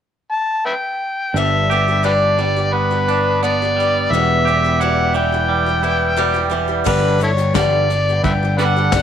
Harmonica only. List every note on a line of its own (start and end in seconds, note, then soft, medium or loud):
0.32 0.64 A5 medium
0.66 0.74 B4 medium
0.66 0.72 E5 medium
0.66 1.40 G5 medium
1.38 2.04 E5 medium
2.05 2.11 G4 medium
2.05 2.12 B4 medium
2.05 2.75 D5 medium
2.73 3.42 B4 medium
3.43 4.13 D5 medium
4.11 4.82 E5 medium
4.81 5.15 F#5 medium
5.16 6.49 G5 medium
6.89 7.20 B4 medium
7.23 7.31 E4 soft
7.23 7.30 A4 soft
7.23 7.54 C#5 medium
7.55 8.21 D5 medium
8.24 8.32 B4 medium
8.24 8.31 E5 medium
8.24 8.57 G5 medium
8.58 8.64 B4 medium
8.58 8.65 D5 medium
8.58 9.02 F#5 medium